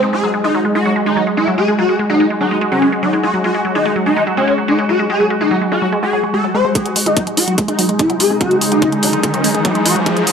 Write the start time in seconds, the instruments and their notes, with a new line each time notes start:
Already playing: ambient pad G#3 D#4 G#4 D#5 D#6
0.03 synth arpeggio sound D#4
0.13 synth arpeggio sound G#3, ambient pad F#4, digital synth lead G#4, closed hi-hat
0.23 synth arpeggio sound F#3, closed hi-hat
0.34 synth arpeggio sound G#3, closed hi-hat
0.44 synth arpeggio sound G#3, digital synth lead D#4
0.55 synth arpeggio sound F#3, closed hi-hat
0.65 synth arpeggio sound G#3, closed hi-hat
0.75 synth arpeggio sound G#3, digital synth lead F#4, closed hi-hat
0.86 synth arpeggio sound F#3
0.96 synth arpeggio sound G#3, closed hi-hat
1.06 synth arpeggio sound G#3, digital synth lead D#4
1.17 synth arpeggio sound F#3, closed hi-hat
1.27 synth arpeggio sound G#3
1.37 synth arpeggio sound G#3, digital synth lead E4, closed hi-hat
1.48 synth arpeggio sound F#3
1.58 synth arpeggio sound G#3, digital synth lead G#4
1.68 synth arpeggio sound G#3
1.79 synth arpeggio sound F#3, digital synth lead F#4, closed hi-hat
1.89 synth arpeggio sound G#3
1.99 synth arpeggio sound G#3, closed hi-hat
2.10 synth arpeggio sound F#3, digital synth lead D#4
2.20 synth arpeggio sound G#3, closed hi-hat
2.30 synth arpeggio sound G#3
2.41 synth arpeggio sound F#3, digital synth lead D#4, closed hi-hat
2.51 synth arpeggio sound G#3
2.61 synth arpeggio sound G#3, closed hi-hat
2.72 synth arpeggio sound F#3, digital synth lead C#4
2.82 synth arpeggio sound G#3, closed hi-hat
2.92 synth arpeggio sound G#3
3.03 synth arpeggio sound F#3, digital synth lead D#4, closed hi-hat
3.13 synth arpeggio sound G#3
3.23 synth arpeggio sound G#3, digital synth lead F#4
3.34 synth arpeggio sound F#3, closed hi-hat
3.44 synth arpeggio sound G#3, digital synth lead F#4, closed hi-hat
3.55 synth arpeggio sound G#3
3.65 synth arpeggio sound F#3, closed hi-hat
3.75 synth arpeggio sound G#3, digital synth lead D#4
3.86 synth arpeggio sound G#3, closed hi-hat
3.96 synth arpeggio sound F#3, closed hi-hat
4.06 synth arpeggio sound G#3, digital synth lead D#4, closed hi-hat
4.17 synth arpeggio sound G#3, closed hi-hat
4.27 synth arpeggio sound F#3, closed hi-hat
4.37 synth arpeggio sound G#3, digital synth lead C#4, closed hi-hat
4.48 synth arpeggio sound G#3, closed hi-hat
4.58 synth arpeggio sound F#3, closed hi-hat
4.68 synth arpeggio sound G#3, digital synth lead D#4, closed hi-hat
4.79 synth arpeggio sound G#3, closed hi-hat
4.89 synth arpeggio sound F#3, digital synth lead F#4, closed hi-hat
4.99 synth arpeggio sound G#3
5.10 synth arpeggio sound G#3, digital synth lead G#4, closed hi-hat
5.20 synth arpeggio sound F#3, closed hi-hat
5.30 synth arpeggio sound G#3, closed hi-hat
5.41 synth arpeggio sound G#3, digital synth lead D#4, closed hi-hat
5.51 synth arpeggio sound F#3, closed hi-hat
5.61 synth arpeggio sound G#3, closed hi-hat
5.72 synth arpeggio sound G#3, digital synth lead F#4, closed hi-hat
5.82 synth arpeggio sound F#3, closed hi-hat
5.92 synth arpeggio sound G#3, closed hi-hat
6.03 synth arpeggio sound G#3, digital synth lead G#4, closed hi-hat
6.13 synth arpeggio sound F#3, closed hi-hat
6.24 synth arpeggio sound G#3, closed hi-hat
6.34 synth arpeggio sound G#3, digital synth lead A4, closed hi-hat
6.44 synth arpeggio sound F#3, closed hi-hat
6.55 synth arpeggio sound G#3, digital synth lead C5, closed hi-hat
6.65 synth arpeggio sound G#3, closed hi-hat
6.75 ambient pad G#3 D#4, synth arpeggio sound G#3, digital synth lead G#4, kick, closed hi-hat, riser
6.86 synth arpeggio sound F#3, closed hi-hat
6.96 synth arpeggio sound G#3, open hi-hat
7.06 synth arpeggio sound G#3, digital synth lead D#4, closed hi-hat
7.17 synth arpeggio sound F#3, kick, closed hi-hat
7.24 synth arpeggio sound G#3, ambient pad G#4, closed hi-hat
7.32 ambient pad D#5
7.37 synth arpeggio sound G#3, digital synth lead F#4, open hi-hat
7.48 synth arpeggio sound F#3, closed hi-hat
7.53 ambient pad D#6
7.58 synth arpeggio sound G#3, kick, closed hi-hat
7.68 synth arpeggio sound G#3, digital synth lead D#4, closed hi-hat
7.79 synth arpeggio sound F#3, open hi-hat
7.89 synth arpeggio sound G#3, closed hi-hat
7.99 synth arpeggio sound G#3, digital synth lead E4, kick, closed hi-hat
8.10 synth arpeggio sound F#3, closed hi-hat
8.20 synth arpeggio sound G#3, digital synth lead G#4, open hi-hat
8.30 synth arpeggio sound G#3, wobble bass C4
8.41 synth arpeggio sound F#3, wobble bass C4, digital synth lead F#4, kick, closed hi-hat
8.51 synth arpeggio sound G#3, closed hi-hat
8.61 synth arpeggio sound G#3, wobble bass G#3, open hi-hat
8.72 synth arpeggio sound F#3, digital synth lead D#4, closed hi-hat
8.82 synth arpeggio sound G#3, kick, closed hi-hat
8.92 synth arpeggio sound G#3, closed hi-hat
9.03 synth arpeggio sound F#3, digital synth lead D#4, open hi-hat
9.13 synth arpeggio sound G#3, closed hi-hat
9.23 synth arpeggio sound G#3, kick, closed hi-hat
9.34 synth arpeggio sound F#3, digital synth lead C#4, closed hi-hat
9.44 synth arpeggio sound G#3, open hi-hat
9.54 synth arpeggio sound G#3, closed hi-hat
9.65 synth arpeggio sound F#3, digital synth lead D#4, kick, closed hi-hat
9.75 synth arpeggio sound G#3, closed hi-hat
9.86 synth arpeggio sound G#3, digital synth lead F#4, open hi-hat
9.96 synth arpeggio sound F#3
10.06 synth arpeggio sound G#3, digital synth lead G#4, kick, closed hi-hat
10.17 synth arpeggio sound G#3, closed hi-hat
10.27 synth arpeggio sound F#3, open hi-hat